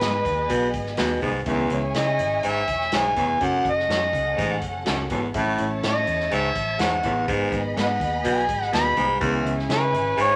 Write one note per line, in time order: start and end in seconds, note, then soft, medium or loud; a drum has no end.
0.00 0.22 G#2 medium
0.00 0.50 B3 medium
0.00 1.43 B3 medium
0.00 0.11 B3 medium
0.00 0.47 D#4 medium
0.00 0.11 D#4 medium
0.00 0.48 G#4 medium
0.00 1.43 G#4 medium
0.00 0.12 G#4 medium
0.00 0.74 B4 medium
0.00 0.48 D#5 medium
0.00 1.43 D#5 medium
0.00 snare loud
0.00 closed hi-hat medium
0.25 0.47 D#2 medium
0.25 kick medium
0.25 closed hi-hat medium
0.49 0.71 B1 medium
0.49 0.69 B2 medium
0.49 kick medium
0.49 closed hi-hat medium
0.73 0.95 G#1 medium
0.73 kick medium
0.73 closed hi-hat medium
0.86 snare soft
0.97 1.20 D#2 medium
0.97 1.17 B2 medium
0.97 1.08 B3 medium
0.97 1.08 D#4 loud
0.97 1.08 G#4 medium
0.97 snare loud
0.97 closed hi-hat loud
1.21 1.43 C2 medium
1.21 1.41 G#2 medium
1.21 1.30 B3 medium
1.21 1.30 D#4 medium
1.21 1.31 G#4 medium
1.21 kick medium
1.21 open hi-hat soft
1.45 1.68 C#2 loud
1.45 1.81 E2 medium
1.45 2.15 C#3 medium
1.45 1.64 C#4 medium
1.45 1.64 E4 medium
1.45 3.37 E4 medium
1.45 1.64 G#4 medium
1.45 3.37 C#5 medium
1.45 1.65 E5 loud
1.45 3.37 G#5 medium
1.45 kick loud
1.45 closed hi-hat medium
1.70 1.92 C#2 loud
1.70 2.41 C#4 medium
1.70 2.42 E4 medium
1.70 2.42 G#4 medium
1.70 2.42 C#5 medium
1.70 closed hi-hat medium
1.94 2.20 C#3 medium
1.94 2.05 E4 medium
1.94 2.05 G#4 medium
1.94 2.05 C#5 medium
1.94 2.41 D#5 medium
1.94 snare medium
1.94 closed hi-hat medium
2.19 2.40 G#1 medium
2.19 closed hi-hat medium
2.43 2.68 G#1 medium
2.43 2.63 G#2 medium
2.43 closed hi-hat medium
2.48 2.99 E5 loud
2.67 2.89 E1 medium
2.67 kick medium
2.67 closed hi-hat medium
2.80 snare soft
2.92 3.13 B1 medium
2.92 3.12 G#2 medium
2.92 3.02 E4 medium
2.92 3.02 G#4 medium
2.92 3.03 C#5 loud
2.92 snare loud
2.92 closed hi-hat loud
2.97 3.46 G#5 loud
3.16 3.38 F1 medium
3.16 3.35 E2 medium
3.16 3.24 E4 medium
3.16 3.25 G#4 medium
3.16 3.25 C#5 medium
3.16 kick medium
3.16 closed hi-hat medium
3.40 3.62 F#1 loud
3.40 3.74 F#2 medium
3.40 3.58 C#4 medium
3.40 5.30 C#4 medium
3.40 3.58 F#4 medium
3.40 5.30 A4 medium
3.40 3.58 A4 medium
3.40 5.30 F#5 medium
3.40 3.59 F#5 medium
3.40 kick loud
3.40 closed hi-hat medium
3.45 3.72 F#5 medium
3.63 3.86 F#1 medium
3.63 4.34 C#4 medium
3.63 4.35 F#4 medium
3.63 4.35 A4 medium
3.63 4.36 F#5 medium
3.63 kick medium
3.63 closed hi-hat medium
3.70 4.64 D#5 loud
3.79 snare soft
3.88 4.10 F#2 medium
3.88 3.99 F#4 medium
3.88 3.99 A4 medium
3.88 4.00 C#5 medium
3.88 snare loud
3.88 closed hi-hat medium
4.13 4.34 C#2 medium
4.13 kick medium
4.13 closed hi-hat medium
4.37 4.59 A1 medium
4.37 4.56 G#2 medium
4.37 kick medium
4.37 closed hi-hat medium
4.61 4.83 F#1 medium
4.61 kick medium
4.61 closed hi-hat medium
4.85 5.08 C#2 medium
4.85 5.05 F#2 medium
4.85 4.96 F#4 medium
4.85 4.96 A4 loud
4.85 4.97 C#5 loud
4.85 snare loud
4.85 closed hi-hat medium
5.10 5.31 G#1 medium
5.10 5.29 E2 medium
5.10 5.18 F#4 medium
5.10 5.18 A4 medium
5.10 5.19 C#5 medium
5.10 kick medium
5.10 closed hi-hat medium
5.34 5.56 A1 loud
5.34 5.68 A2 medium
5.34 6.03 A2 medium
5.34 5.52 C#4 medium
5.34 7.24 E4 medium
5.34 5.52 E4 medium
5.34 5.52 A4 medium
5.34 7.24 C#5 medium
5.34 5.52 E5 loud
5.34 7.24 A5 medium
5.34 kick loud
5.34 closed hi-hat medium
5.58 5.80 A1 medium
5.58 6.29 C#4 medium
5.58 6.29 E4 medium
5.58 6.29 A4 medium
5.58 6.30 C#5 medium
5.58 closed hi-hat medium
5.83 6.04 A2 medium
5.83 5.92 E4 medium
5.83 5.93 A4 medium
5.83 5.93 C#5 medium
5.83 6.30 D#5 medium
5.83 snare medium
5.83 closed hi-hat medium
6.07 6.28 E2 medium
6.07 closed hi-hat medium
6.20 snare soft
6.31 6.53 C#2 medium
6.31 6.50 G#2 medium
6.31 6.82 E5 medium
6.31 closed hi-hat medium
6.55 6.76 A1 medium
6.55 kick medium
6.55 closed hi-hat medium
6.79 7.00 E2 medium
6.79 6.99 G#2 medium
6.79 6.89 E4 medium
6.79 6.90 A4 medium
6.79 6.90 C#5 medium
6.79 7.28 F#5 loud
6.79 snare loud
6.79 closed hi-hat loud
7.03 7.25 A1 medium
7.03 7.23 E2 medium
7.03 7.11 E4 medium
7.03 7.12 A4 medium
7.03 7.12 C#5 medium
7.03 kick medium
7.03 closed hi-hat medium
7.27 7.49 G#1 loud
7.27 7.62 G#2 medium
7.27 7.97 G#2 medium
7.27 7.45 B3 medium
7.27 7.46 D#4 medium
7.27 9.17 G#4 medium
7.27 7.46 G#4 medium
7.27 9.17 D#5 medium
7.27 7.46 D#5 medium
7.27 9.17 B5 medium
7.27 kick loud
7.27 closed hi-hat medium
7.51 7.73 G#1 medium
7.51 8.22 B3 medium
7.51 8.22 D#4 medium
7.51 8.23 G#4 medium
7.51 8.23 D#5 medium
7.51 kick medium
7.51 closed hi-hat medium
7.77 7.98 G#2 medium
7.77 7.86 B3 medium
7.77 7.86 D#4 medium
7.77 7.87 G#4 medium
7.77 7.87 B4 soft
7.77 7.88 D#5 soft
7.77 8.23 F#5 medium
7.77 snare medium
7.77 closed hi-hat medium
7.99 8.21 D#2 medium
7.99 kick medium
7.99 closed hi-hat medium
8.24 8.46 B1 medium
8.24 8.44 B2 medium
8.24 kick medium
8.24 closed hi-hat medium
8.28 8.72 G#5 medium
8.49 8.70 G#1 medium
8.49 kick medium
8.49 closed hi-hat medium
8.62 snare soft
8.72 8.94 D#2 loud
8.72 8.92 B2 medium
8.72 8.83 B3 medium
8.72 8.83 D#4 loud
8.72 8.83 G#4 medium
8.72 9.19 B5 loud
8.72 snare loud
8.72 closed hi-hat loud
8.96 9.18 C2 medium
8.96 9.16 G#2 medium
8.96 9.05 B3 medium
8.96 9.05 D#4 medium
8.96 9.05 G#4 medium
8.96 kick medium
8.96 closed hi-hat medium
9.20 9.42 C#2 loud
9.20 9.55 E2 medium
9.20 9.90 C#3 medium
9.20 9.38 C#4 medium
9.20 10.36 E4 medium
9.20 9.38 E4 medium
9.20 9.39 G#4 medium
9.20 10.36 C#5 medium
9.20 9.39 E5 medium
9.20 10.36 G#5 medium
9.20 kick loud
9.20 closed hi-hat medium
9.43 9.66 C#2 loud
9.43 10.15 C#4 medium
9.43 10.15 E4 medium
9.43 10.15 G#4 medium
9.43 10.16 E5 medium
9.43 closed hi-hat medium
9.59 snare soft
9.69 9.94 C#3 loud
9.69 9.79 E4 medium
9.69 9.79 G#4 medium
9.69 10.16 B4 medium
9.69 9.80 C#5 medium
9.69 snare medium
9.69 closed hi-hat medium
9.92 10.14 G#1 medium
9.92 closed hi-hat medium
10.17 10.36 G#1 medium
10.17 10.36 G#2 medium
10.17 10.36 C#5 loud
10.17 closed hi-hat medium